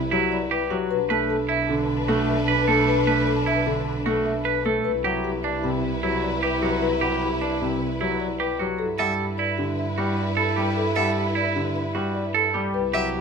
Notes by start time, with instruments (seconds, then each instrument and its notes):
Already playing: double bass C2, clarinet E4, violin section E4 B4
0.11 grand piano F#3, clean electric guitar E4, marimba G4
0.32 marimba D5
0.51 clean electric guitar G4, marimba B4
0.70 grand piano F#3, clean electric guitar F#4, marimba G4
0.90 double bass B1, violin section D4 B4, clarinet D4, marimba B4
1.10 grand piano A3, clean electric guitar B4, marimba A5
1.30 marimba A4
1.49 clean electric guitar E4, marimba E5
1.69 grand piano D3, marimba A4
2.08 grand piano A3, clean electric guitar F#4, marimba A4
2.29 marimba E5
2.48 clean electric guitar B4, marimba B4
2.68 grand piano A3, clean electric guitar A4, marimba A4
2.88 marimba B4
3.07 grand piano A3, clean electric guitar B4, marimba A5
3.27 marimba A4
3.46 clean electric guitar E4, marimba E5
3.66 grand piano D3, marimba A4
4.06 grand piano A3, clean electric guitar F#4, marimba A4
4.26 marimba E5
4.44 marimba B4, clean electric guitar B4
4.65 grand piano A3, marimba A4, clean electric guitar A4
4.84 double bass C2, violin section E4 B4, clarinet E4, marimba B4
5.04 grand piano F#3, clean electric guitar G4, marimba F#5
5.24 marimba G4
5.44 clean electric guitar D4, marimba D5
5.63 grand piano C3, marimba G4
6.03 grand piano F#3, clean electric guitar E4, marimba G4
6.23 marimba D5
6.42 clean electric guitar G4, marimba B4
6.62 grand piano F#3, clean electric guitar F#4, marimba G4
6.82 marimba B4
7.01 grand piano F#3, clean electric guitar G4, marimba F#5
7.23 marimba G4
7.41 clean electric guitar D4, marimba D5
7.61 grand piano C3, marimba G4
8.00 grand piano F#3, clean electric guitar E4, marimba G4
8.20 marimba D5
8.40 clean electric guitar G4, marimba B4
8.59 grand piano F#3, clean electric guitar F#4, marimba G4
8.79 double bass G2, clarinet E4, violin section E4 B4, marimba A4
8.98 grand piano G3, clean electric guitar A4, violin E5, marimba F#5
9.18 marimba G4
9.38 clean electric guitar E4, marimba D5
9.58 grand piano D3, marimba G4
9.79 marimba E5
9.98 grand piano G3, clean electric guitar F#4, marimba G4
10.17 marimba D5
10.37 clean electric guitar A4, marimba A4
10.56 grand piano G3, clean electric guitar G4, marimba G4
10.76 marimba A4
10.96 grand piano G3, clean electric guitar A4, violin E5, marimba F#5
11.16 marimba G4
11.35 clean electric guitar E4, marimba D5
11.56 grand piano D3, marimba G4
11.76 marimba E5
11.95 grand piano G3, clean electric guitar F#4, marimba G4
12.15 marimba D5
12.34 marimba A4, clean electric guitar A4
12.54 grand piano G3, clean electric guitar G4, marimba G4
12.74 double bass C2, clarinet E4, violin section E4 B4, marimba B4
12.94 grand piano F#3, clean electric guitar G4, violin E5, marimba F#5
13.15 marimba G4